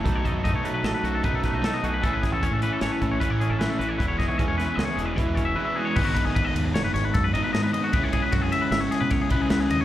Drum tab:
CC |----------|----------|----------|x---------|
RD |----------|----------|----------|-xxxxxxxxx|
HH |xxxxxxxxxx|xxxxxxxxxx|xxxxxxxx--|----------|
SD |----o--oo-|-o--o---o-|-o-oo-----|----ooo-o-|
BD |ooo---oo--|ooo--oo---|ooo---oo--|ooo---o---|

CC |----------|
RD |xxxxxxxxxx|
HH |----------|
SD |--o-ooo-o-|
BD |ooo---oo--|